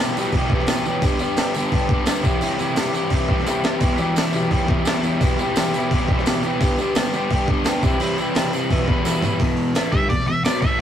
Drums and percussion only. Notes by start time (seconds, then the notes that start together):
0.17 tambourine
0.32 kick, crash
0.50 kick
0.59 snare
0.67 snare, tambourine, crash
0.85 tambourine
1.02 kick, tambourine, crash
1.19 tambourine
1.37 snare, tambourine, crash
1.54 tambourine
1.72 kick, crash
1.89 kick
2.06 snare, tambourine, crash
2.24 kick, tambourine
2.41 tambourine, crash
2.59 tambourine
2.76 snare, tambourine, crash
2.94 tambourine
3.10 kick, tambourine, crash
3.28 kick
3.40 snare
3.47 snare, tambourine
3.64 snare, tambourine
3.80 kick, tambourine, crash
3.98 tambourine
4.16 snare, tambourine, crash
4.33 tambourine
4.51 kick, crash
4.68 kick
4.85 snare, tambourine, crash
5.03 tambourine
5.21 kick, tambourine, crash
5.39 tambourine
5.56 snare, tambourine, crash
5.74 tambourine
5.91 kick, crash
6.08 kick
6.19 snare
6.26 snare, tambourine, crash
6.43 tambourine
6.61 kick, tambourine, crash
6.78 tambourine
6.95 snare, tambourine, crash
7.13 tambourine
7.30 kick, crash
7.48 kick
7.64 snare, tambourine, crash
7.83 kick, tambourine
8.00 tambourine, crash
8.18 tambourine
8.35 snare, tambourine, crash
8.53 tambourine
8.70 kick, tambourine, crash
8.88 kick
9.05 snare, tambourine
9.22 floor tom, tambourine
9.40 kick, open hi-hat
9.57 open hi-hat
9.75 snare, open hi-hat, tambourine
9.92 kick, open hi-hat
10.10 kick, open hi-hat
10.20 snare
10.27 open hi-hat
10.45 snare, open hi-hat, tambourine
10.62 kick, open hi-hat